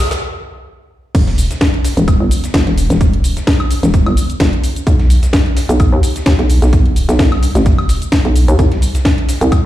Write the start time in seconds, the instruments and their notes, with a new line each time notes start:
0.11 snare, closed hi-hat, shaker
1.15 fm bass E1, kick, closed hi-hat, crash, shaker
1.27 snare, closed hi-hat
1.38 closed hi-hat, open hi-hat, shaker
1.51 snare, closed hi-hat, shaker
1.61 kick, snare, closed hi-hat, shaker
1.74 closed hi-hat
1.84 snare, closed hi-hat, open hi-hat, shaker
1.97 fm bass E1, closed hi-hat, shaker
2.08 kick, closed hi-hat, high woodblock, shaker
2.20 fm bass G1
2.31 closed hi-hat, open hi-hat, shaker
2.44 snare, closed hi-hat, shaker
2.54 fm bass G1, kick, snare, closed hi-hat, shaker
2.67 fm bass E1, snare, closed hi-hat
2.78 closed hi-hat, open hi-hat, shaker
2.90 fm bass E1, snare, closed hi-hat, shaker
3.01 kick, closed hi-hat, shaker
3.13 closed hi-hat
3.24 closed hi-hat, open hi-hat, shaker
3.37 snare, closed hi-hat, shaker
3.47 kick, snare, closed hi-hat, open hi-hat, shaker
3.60 closed hi-hat, high woodblock
3.71 closed hi-hat, open hi-hat, shaker
3.83 fm bass E1, snare, closed hi-hat, shaker
3.94 kick, closed hi-hat, shaker
4.06 fm bass G1, closed hi-hat, high woodblock
4.17 closed hi-hat, open hi-hat, shaker
4.30 closed hi-hat, shaker
4.40 fm bass G1, kick, snare, closed hi-hat, shaker
4.53 closed hi-hat
4.63 closed hi-hat, open hi-hat, shaker
4.76 closed hi-hat, shaker
4.87 fm bass B1, kick, closed hi-hat, shaker
4.99 snare, closed hi-hat
5.10 closed hi-hat, open hi-hat, shaker
5.23 snare, closed hi-hat, shaker
5.33 kick, snare, closed hi-hat, shaker
5.46 closed hi-hat
5.57 snare, closed hi-hat, open hi-hat, shaker
5.69 fm bass B1, closed hi-hat, shaker
5.80 kick, closed hi-hat, high woodblock, shaker
5.92 fm bass D#2
6.03 closed hi-hat, open hi-hat, shaker
6.16 snare, closed hi-hat, shaker
6.26 fm bass D#2, kick, snare, closed hi-hat, shaker
6.39 fm bass B1, snare, closed hi-hat
6.50 closed hi-hat, open hi-hat, shaker
6.62 fm bass B1, snare, closed hi-hat, shaker
6.73 kick, closed hi-hat, shaker
6.86 closed hi-hat
6.96 closed hi-hat, open hi-hat, shaker
7.09 fm bass B1, snare, closed hi-hat, shaker
7.19 fm bass C2, kick, snare, closed hi-hat, open hi-hat, shaker
7.32 closed hi-hat, high woodblock
7.43 closed hi-hat, open hi-hat, shaker
7.55 fm bass A1, snare, closed hi-hat, shaker
7.66 kick, closed hi-hat, shaker
7.78 closed hi-hat, high woodblock
7.89 closed hi-hat, open hi-hat, shaker
8.02 closed hi-hat, shaker
8.12 kick, snare, closed hi-hat, shaker
8.25 fm bass B1, closed hi-hat
8.36 closed hi-hat, open hi-hat, shaker
8.48 fm bass D#2, closed hi-hat, shaker
8.59 fm bass C2, kick, closed hi-hat, shaker
8.72 snare, closed hi-hat
8.82 closed hi-hat, open hi-hat, shaker
8.95 snare, closed hi-hat, shaker
9.05 kick, snare, closed hi-hat, shaker
9.18 closed hi-hat
9.29 snare, closed hi-hat, open hi-hat, shaker
9.41 fm bass C2, closed hi-hat, shaker
9.52 kick, closed hi-hat, high woodblock, shaker